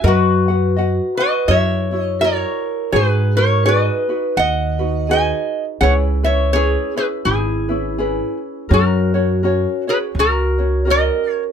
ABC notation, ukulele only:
X:1
M:4/4
L:1/8
Q:"Swing" 1/4=83
K:F#mix
V:1 name="Ukulele"
[FBdf] [FBf] [FBdf] [FBf] [EFAc] [EFc] [EFAc]2 | [DFGB] [DF] [DFGB] [DFB]2 [DFB] [DFGB]2 | [CEGB] [CEB] [CEGB] [CEB]2 [CEB] [CEGB]2 | [CFAc] [CFc] [CFAc] [CFc]2 [CFc] [CFAc]2 |]